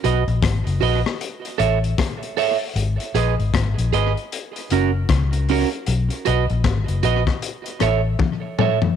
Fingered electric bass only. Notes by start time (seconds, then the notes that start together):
0.05 B1
0.27 A#1
0.42 G#1
0.67 F#1
0.81 A#1
1.60 A1
2.75 G#1
3.14 A#1
3.39 G#1
3.54 G#1
3.78 A#1
3.93 G#1
4.71 F#1
5.09 C#2
5.88 B1
6.27 B1
6.50 A#1
6.64 G#1
6.89 F#1
7.03 A#1
7.81 A1